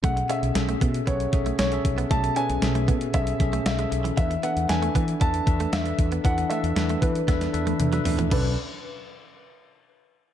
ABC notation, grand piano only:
X:1
M:4/4
L:1/16
Q:1/4=116
K:A
V:1 name="Grand piano"
f2 e6 c4 c3 z | a2 g6 e4 e3 z | e2 f2 g4 a4 e3 z | f2 e4 B8 z2 |
B2 z12 z2 |]